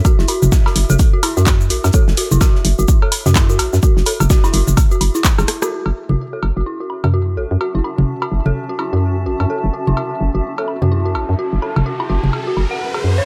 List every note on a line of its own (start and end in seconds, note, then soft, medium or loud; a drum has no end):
0.00 5.72 E5 medium
0.05 0.11 F#4 medium
0.05 kick loud
0.05 cowbell medium
0.05 cabasa medium
0.05 shaker medium
0.19 0.25 F#1 loud
0.19 0.23 E4 medium
0.19 snare soft
0.28 0.34 F#4 medium
0.28 open hi-hat medium
0.28 low woodblock medium
0.28 shaker medium
0.42 0.49 F#1 loud
0.42 mid tom medium
0.42 cabasa soft
0.52 kick loud
0.52 snare loud
0.52 cabasa medium
0.52 shaker medium
0.66 0.70 F#4 medium
0.66 snare medium
0.66 cowbell medium
0.66 low woodblock medium
0.76 0.85 F#1 medium
0.76 open hi-hat medium
0.76 shaker medium
0.90 0.96 F#1 medium
0.90 0.94 A4 medium
0.90 mid tom medium
0.90 cabasa soft
0.99 kick loud
0.99 open hi-hat soft
0.99 cabasa medium
0.99 shaker loud
1.13 1.17 F#4 medium
1.23 1.29 E4 medium
1.23 open hi-hat medium
1.23 cowbell medium
1.23 low woodblock medium
1.23 shaker medium
1.37 1.72 F#2 loud
1.37 1.41 F#4 medium
1.37 snare soft
1.37 cabasa soft
1.46 kick loud
1.46 snare loud
1.46 clap loud
1.46 cabasa medium
1.46 shaker medium
1.61 cabasa soft
1.70 1.79 A1 medium
1.70 1.76 F#4 medium
1.70 open hi-hat medium
1.70 shaker medium
1.84 1.90 F#2 loud
1.84 snare soft
1.84 cowbell medium
1.84 cabasa soft
1.93 2.00 A4 medium
1.93 kick loud
1.93 cabasa medium
1.93 shaker medium
2.08 2.14 F#1 loud
2.08 snare medium
2.17 2.23 F#4 medium
2.17 open hi-hat medium
2.17 shaker medium
2.31 2.38 F#1 loud
2.31 2.36 E4 medium
2.31 mid tom medium
2.31 cabasa soft
2.41 2.47 F#4 medium
2.41 kick loud
2.41 snare loud
2.41 cowbell medium
2.41 cabasa medium
2.41 shaker medium
2.55 snare soft
2.65 2.74 F#1 loud
2.65 open hi-hat medium
2.65 shaker medium
2.79 2.85 F#1 loud
2.79 2.83 F#4 medium
2.79 cabasa soft
2.88 kick loud
2.88 cabasa medium
2.88 shaker medium
3.02 3.06 A4 medium
3.02 cowbell medium
3.12 open hi-hat loud
3.12 low woodblock medium
3.12 shaker medium
3.26 3.61 F#2 loud
3.26 3.30 F#4 medium
3.26 snare medium
3.26 mid tom medium
3.26 cabasa soft
3.35 3.42 E4 medium
3.35 kick loud
3.35 snare loud
3.35 clap loud
3.35 cabasa medium
3.35 shaker medium
3.50 3.54 F#4 medium
3.50 cabasa soft
3.59 3.68 A1 medium
3.59 snare soft
3.59 open hi-hat medium
3.59 cowbell medium
3.59 shaker medium
3.73 3.79 F#2 loud
3.73 snare medium
3.73 cabasa soft
3.83 3.89 F#4 medium
3.83 kick loud
3.83 cabasa medium
3.83 shaker medium
3.97 4.03 F#1 loud
3.97 snare medium
4.06 4.12 A4 medium
4.06 open hi-hat medium
4.06 low woodblock medium
4.06 shaker medium
4.20 4.27 F#1 loud
4.20 mid tom medium
4.20 cowbell medium
4.20 cabasa soft
4.30 4.36 F#4 medium
4.30 kick loud
4.30 snare loud
4.30 cabasa medium
4.30 shaker medium
4.44 4.48 E4 medium
4.44 snare medium
4.44 cabasa soft
4.44 low woodblock medium
4.53 4.63 F#1 loud
4.53 4.60 F#4 medium
4.53 open hi-hat medium
4.53 shaker medium
4.68 4.74 F#1 medium
4.68 mid tom medium
4.68 cabasa soft
4.77 kick loud
4.77 open hi-hat soft
4.77 cowbell medium
4.77 cabasa medium
4.77 shaker loud
4.91 4.95 F#4 medium
4.91 cabasa soft
5.01 5.10 F#1 medium
5.01 open hi-hat medium
5.01 low woodblock medium
5.01 shaker medium
5.14 5.19 E4 medium
5.14 snare soft
5.14 cabasa soft
5.24 kick loud
5.24 snare loud
5.24 clap loud
5.24 cabasa medium
5.24 shaker medium
5.38 5.45 F#1 loud
5.38 5.41 E4 medium
5.38 cross-stick soft
5.38 snare soft
5.38 cowbell medium
5.38 cabasa soft
5.48 cross-stick medium
5.48 open hi-hat medium
5.48 shaker medium
5.62 5.66 F#4 loud
5.62 cross-stick medium
5.62 cabasa soft
5.62 low woodblock medium
5.72 13.25 C#4 medium
5.72 5.78 F#4 medium
5.86 5.92 F#1 medium
5.86 cowbell medium
6.02 13.25 F#4 medium
6.02 13.25 E5 medium
6.09 6.16 F#1 loud
6.09 6.14 F#4 medium
6.09 mid tom medium
6.33 6.37 A4 medium
6.33 13.25 A5 medium
6.43 6.52 F#1 medium
6.43 cowbell medium
6.57 6.63 F#1 medium
6.57 6.61 F#4 medium
6.66 6.72 E4 medium
6.80 6.84 F#4 medium
6.90 low woodblock medium
7.04 7.39 F#2 loud
7.04 mid tom medium
7.04 cowbell medium
7.14 7.20 F#4 medium
7.37 7.46 A1 medium
7.37 7.43 A4 medium
7.51 7.57 F#2 medium
7.61 7.67 F#4 medium
7.61 cowbell medium
7.75 7.81 F#1 medium
7.75 7.79 E4 medium
7.84 7.90 F#4 medium
7.84 low woodblock medium
7.98 8.05 F#1 loud
7.98 mid tom medium
8.22 8.26 F#4 medium
8.22 cowbell medium
8.22 low woodblock medium
8.32 8.41 F#1 medium
8.46 8.52 F#1 medium
8.46 8.50 A4 medium
8.46 mid tom medium
8.69 8.73 F#4 medium
8.79 8.85 E4 medium
8.79 cowbell medium
8.79 low woodblock soft
8.93 9.28 F#2 medium
8.93 8.97 F#4 medium
9.26 9.35 A1 medium
9.26 9.32 F#4 medium
9.40 9.46 F#2 medium
9.40 cowbell medium
9.50 9.56 A4 medium
9.50 riser medium
9.64 9.70 F#1 loud
9.73 9.79 F#4 medium
9.87 9.94 F#1 loud
9.87 9.92 E4 medium
9.87 mid tom medium
9.97 10.03 F#4 medium
9.97 cowbell medium
10.21 10.30 F#1 medium
10.35 10.41 F#1 medium
10.35 10.39 F#4 medium
10.58 10.62 A4 medium
10.58 cowbell medium
10.68 low woodblock medium
10.82 11.17 F#2 medium
10.82 10.86 F#4 medium
10.82 mid tom medium
10.92 10.97 E4 medium
11.05 11.10 F#4 medium
11.15 11.24 A1 medium
11.15 cowbell medium
11.29 11.35 F#2 medium
11.39 11.45 F#4 medium
11.53 11.59 F#1 medium
11.62 11.68 A4 medium
11.62 low woodblock medium
11.76 11.83 F#1 loud
11.76 mid tom medium
11.76 cowbell medium
11.86 11.92 F#4 medium
12.00 12.04 E4 medium
12.00 low woodblock medium
12.10 12.19 F#1 medium
12.10 12.15 F#4 medium
12.23 12.30 F#1 medium
12.23 mid tom medium
12.33 cowbell medium
12.47 12.51 F#4 medium
12.57 12.66 F#1 medium
12.57 low woodblock medium
12.71 12.77 F#5 loud
12.94 12.99 G#4 medium
12.94 cowbell medium
13.04 13.21 F#2 medium
13.18 13.22 C#5 medium